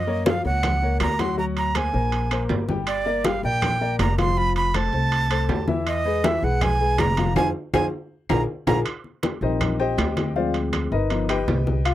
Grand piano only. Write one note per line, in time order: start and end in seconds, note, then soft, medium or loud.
0.07 0.23 A#3 medium
0.07 0.23 A#4 medium
0.07 0.23 C#5 medium
0.26 0.41 F3 medium
0.26 0.41 F4 medium
0.26 0.42 F5 medium
0.45 0.75 A#3 medium
0.45 0.76 A#4 medium
0.45 0.76 C#5 medium
0.82 1.13 A#3 medium
0.82 1.13 A#4 medium
0.82 1.13 C#5 medium
1.19 1.35 F#3 medium
1.19 1.35 F#4 medium
1.19 1.35 F#5 medium
1.37 1.68 F#3 medium
1.37 1.69 F#4 medium
1.37 1.69 F#5 medium
1.75 1.91 A#3 medium
1.75 1.91 A#4 medium
1.75 1.91 C5 medium
1.94 2.25 A#3 medium
1.94 2.25 A#4 medium
1.94 2.25 C5 medium
2.31 2.62 A#3 medium
2.31 2.62 A#4 medium
2.31 2.63 C5 medium
2.69 3.00 G3 medium
2.69 3.00 G4 medium
2.69 3.00 G5 medium
3.06 3.21 A#3 medium
3.06 3.22 A#4 medium
3.06 3.22 D5 medium
3.25 3.40 G3 medium
3.25 3.41 G4 medium
3.25 3.41 G5 medium
3.44 3.74 A#3 medium
3.44 3.74 A#4 medium
3.44 3.75 D5 medium
3.81 4.12 A#3 medium
3.81 4.12 A#4 medium
3.81 4.12 D5 medium
4.19 4.34 F3 medium
4.19 4.34 F4 medium
4.19 4.34 F5 medium
4.37 4.68 F3 medium
4.37 4.68 F4 medium
4.37 4.68 F5 medium
4.74 4.90 A3 medium
4.74 4.90 A4 medium
4.74 4.90 C5 medium
4.93 5.24 A3 medium
4.93 5.24 A4 medium
4.93 5.24 C5 medium
5.30 5.61 A3 medium
5.30 5.61 A4 medium
5.30 5.61 C5 medium
5.68 5.98 E3 medium
5.68 5.99 E4 medium
5.68 5.99 E5 loud
6.05 6.21 G#3 medium
6.05 6.21 G#4 medium
6.05 6.21 B4 medium
6.24 6.39 E3 medium
6.24 6.39 E4 medium
6.24 6.40 E5 medium
6.42 6.73 G#3 medium
6.42 6.73 G#4 medium
6.42 6.74 B4 medium
6.80 7.11 G#3 medium
6.80 7.11 G#4 medium
6.80 7.11 B4 medium
7.18 7.33 F3 medium
7.18 7.33 F4 medium
7.18 7.33 F5 medium
7.36 7.48 F4 medium
7.36 7.48 G#4 loud
7.36 7.48 C5 medium
7.74 7.86 F4 loud
7.74 7.86 G#4 loud
7.74 7.86 C5 loud
8.30 8.42 F4 loud
8.30 8.42 G#4 medium
8.30 8.42 A#4 medium
8.67 8.79 F4 loud
8.67 8.79 G#4 medium
8.67 8.79 A#4 loud
9.42 10.31 F3 medium
9.42 10.32 G3 soft
9.42 10.32 C4 medium
9.42 9.77 D#4 medium
9.42 9.77 A#4 medium
9.42 9.77 C5 medium
9.42 9.77 D#5 medium
9.80 10.32 G4 medium
9.80 10.32 C5 medium
9.80 10.32 D#5 medium
9.80 10.32 G5 loud
10.35 10.88 F3 medium
10.35 10.89 G#3 medium
10.35 10.89 C4 medium
10.35 10.54 F4 medium
10.35 10.54 C5 medium
10.35 10.54 D5 medium
10.35 10.54 F5 medium
10.92 11.10 D#4 medium
10.92 11.27 A#4 medium
10.92 11.27 B4 medium
10.92 11.27 D#5 medium
11.10 11.35 F3 medium
11.10 11.36 B3 medium
11.10 11.36 D#4 medium
11.29 11.82 G4 medium
11.29 11.82 B4 medium
11.29 11.81 D#5 medium
11.29 11.81 G5 loud
11.85 11.94 F4 medium
11.85 11.94 F5 loud